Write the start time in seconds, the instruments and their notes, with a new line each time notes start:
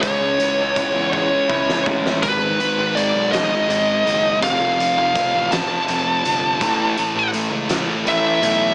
0.01 picked electric bass C#2, distorted electric guitar C#3 G#3 C#4, lead electric guitar C#5, kick, closed hi-hat
0.39 distorted electric guitar C#3 G#3 C#4, clean electric guitar E3, closed hi-hat
0.57 picked electric bass C#2
0.75 distorted electric guitar C#3 G#3 C#4, clean electric guitar E3, kick, closed hi-hat
0.95 picked electric bass E2
1.12 distorted electric guitar C#3 G#3 C#4, lead electric guitar C#5, kick
1.48 picked electric bass C#2, distorted electric guitar C#3 G#3 C#4, clean electric guitar E4, kick
1.70 snare
1.86 picked electric bass A1, distorted electric guitar C#3 G#3 C#4, kick
2.06 snare
2.22 picked electric bass G#1, distorted electric guitar G#2 D#3 G#3, lead electric guitar B4, kick, closed hi-hat
2.59 distorted electric guitar G#2 D#3 G#3, closed hi-hat
2.78 picked electric bass G#1
2.95 distorted electric guitar G#2 D#3 G#3, lead electric guitar D5, closed hi-hat
3.14 picked electric bass B1
3.32 distorted electric guitar G#2 D#3 G#3, lead electric guitar D#5, snare, closed hi-hat
3.69 picked electric bass G#1, distorted electric guitar G#2 D#3 G#3, closed hi-hat
4.04 picked electric bass F#1, distorted electric guitar G#2 D#3 G#3, closed hi-hat
4.41 picked electric bass F1, distorted electric guitar F2 C3 F3, lead electric guitar F5, kick, closed hi-hat
4.78 distorted electric guitar F2 C3 F3, closed hi-hat
4.97 picked electric bass F1
5.15 distorted electric guitar F2 C3 F3, kick, closed hi-hat
5.34 picked electric bass A1
5.51 distorted electric guitar F2 C3 F3, lead electric guitar A5, snare, closed hi-hat
5.88 picked electric bass F1, distorted electric guitar F2 C3 F3, closed hi-hat
6.24 picked electric bass G1, distorted electric guitar F2 C3 F3, closed hi-hat
6.60 picked electric bass A1, distorted electric guitar A2 E3 A3, kick, closed hi-hat
6.97 distorted electric guitar A2 E3 A3, closed hi-hat
7.15 picked electric bass A1
7.32 distorted electric guitar A2 E3 A3, closed hi-hat
7.51 picked electric bass C#2
7.69 distorted electric guitar A2 E3 A3, snare, closed hi-hat
8.05 picked electric bass A1, distorted electric guitar A2 E3 A3, lead electric guitar E5, closed hi-hat
8.42 picked electric bass B1, distorted electric guitar A2 E3 A3, closed hi-hat